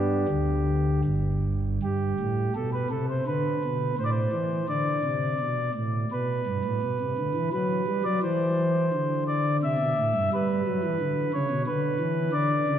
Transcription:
pipe organ
Already playing: G2 G3 B3 D4 G4
0.28 D2 D3
1.05 G1 G2
1.83 G2 G4
2.20 A2
2.55 B2 A4
2.73 B4
2.90 C3 A4
3.10 C5
3.27 D3 B4
3.64 B2
3.98 A2 C5
4.04 D5
4.11 C5
4.32 E3
4.69 D3 D5
5.05 C3
5.40 B2
5.75 A2
6.12 B2 B4
6.47 G2
6.65 A2
6.82 B2
7.00 C3
7.18 D3
7.35 E3
7.53 F#3 B4
7.87 G3
8.04 F#3 D5
8.23 E3 C5
8.93 D3
9.28 D5
9.63 C3 E5
9.78 B2
9.98 A2
10.15 G2
10.34 G3 B4
10.67 F#3
10.84 E3
11.00 D3
11.34 C#3 C#5
11.51 B2
11.67 D3 B4
12.00 E3
12.33 D3 D5
12.68 C#3

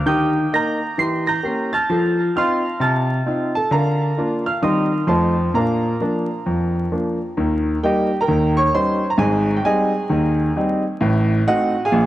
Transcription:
grand piano
0.06 D#3 G4 G5 D#6 G6
0.53 A#3 D#4 A#5 G6 A#6
0.98 E3 G4 C6 C7
1.27 A#5 G6 A#6
1.43 A#3 C#4 G4
1.73 A5 F6 A6
1.89 F3 A4
2.36 C4 D#4 F4 F5 C6 F6
2.80 C3 A5 F6 A6
3.26 C4 D#4 F4
3.55 A4 A5
3.71 D3 A#4 F5 A#5
4.17 A#3 D4 F4
4.46 F5 F6
4.62 D#3 G3 C4 D#4 D#5 C6 D#6
5.07 F2 F3 A3 D#4 C5 A5 C6
5.54 A#2 D4 A#4 F5 A#5
6.00 F3 A#3 D4
6.46 F2
6.92 F3 A#3 D4
7.37 D#2 D#3
7.83 G3 A#3 D#4 G4 D#5 G5
8.21 A#4 G5 A#5
8.28 D#2 D#3
8.57 C#5 C#6
8.74 G3 C#4 D#4 C5 C6
9.10 A#5
9.18 G#1 G#2 G#4 D#5 G#5
9.57 G5
9.65 G3 C4 D#4 G#4 D#5 G#5
10.10 D#2 D#3
10.56 G3 C4 D#4
11.01 A1 A2
11.47 A3 C4 D#4 F#4 D#5 F#5
11.85 G#4 F5 G#5
11.92 A#1 A#2

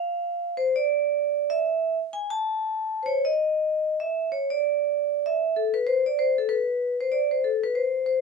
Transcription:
vibraphone
Already playing: F5
0.57 C5
0.76 D5
1.50 E5
2.13 G#5
2.30 A5
3.03 C5 C#5
3.25 D#5
4.00 E5
4.32 C#5
4.50 D5
5.26 E5
5.56 A4
5.74 B4
5.87 C5
6.06 D5
6.19 C5
6.38 A4
6.49 B4
7.01 C5
7.12 D5
7.31 C5
7.44 A4
7.63 B4
7.75 C5
8.06 C5

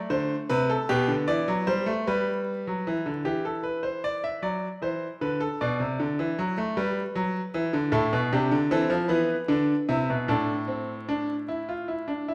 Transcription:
grand piano
Already playing: A3
0.10 D3 C5
0.50 C3 B4
0.70 A4
0.89 B2 B3 G4
1.08 D3
1.28 E3 D5
1.48 F#3
1.67 G3 C5
1.86 A3
2.07 G3 B4
2.67 F#3
2.87 E3
3.06 D3
3.25 E3 G4
3.45 A4
3.63 B4
3.83 C5
4.04 D5
4.24 E5
4.42 F#3 D5
4.82 E3 C5
5.21 D3 B4
5.40 A4
5.61 B2 D5
5.80 C3
6.00 D3
6.19 E3
6.39 F#3
6.58 A3
6.77 G3 B4
7.15 F#3
7.54 E3
7.73 D3
7.92 A2 E4 A4
8.13 B2
8.32 C3 D4 G4
8.51 D3
8.71 E3 C4 A4
8.90 F3
9.08 E3 B3 B4
9.48 D3 D4
9.89 C3 E4
10.10 B2
10.28 A2 D4 A4
10.68 C4
11.09 D4
11.48 E4
11.69 F4
11.88 E4
12.08 D4
12.28 E4

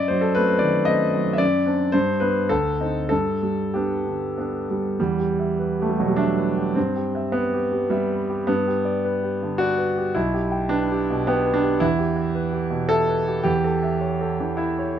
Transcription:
grand piano
Already playing: F#2 D5
0.08 F#3 C5
0.21 A4
0.35 A3 C4 B4
0.48 C5
0.59 D#3 D5
0.85 A3 C4 D#5
1.15 F#3
1.33 E5
1.38 F#2 D5
1.66 C4 D4
1.92 G2 C5
2.20 B3 D4 B4
2.49 D2 A4
2.80 C4 D#4
3.09 G2 A4
3.43 G3
3.74 B3 D4 G4
4.07 D3
4.38 B3 D4
4.70 G3
5.00 E2 G3
5.20 G4
5.39 E5
5.59 B4
5.80 A3 G4
5.89 G3
5.99 B2 F#3
6.08 G3
6.16 D4 E5
6.37 B4
6.58 G4
6.75 G2 C4
6.96 G4
7.15 E5
7.32 B3 B4
7.54 G4
7.72 G3
7.90 G3 E5
8.12 B4
8.29 G4
8.47 G2 B3
8.67 G4
8.85 D5
9.05 B4
9.23 G4
9.43 D3
9.58 F#4 D5
9.78 B4
9.97 G4
10.15 B1 E4
10.34 G4
10.52 G5
10.69 D4 B4
10.92 G4
11.10 B2
11.27 B3 G5
11.46 B4
11.54 D4
11.63 G4
11.80 E2 E4
11.99 G4
12.16 E5
12.35 B4
12.53 G4
12.70 B2
12.89 A4 E5
13.09 B4
13.27 G4
13.44 E2 G4
13.64 A4
13.83 E5
14.01 C#5
14.21 A4
14.40 E3
14.57 E4 E5
14.79 C#5

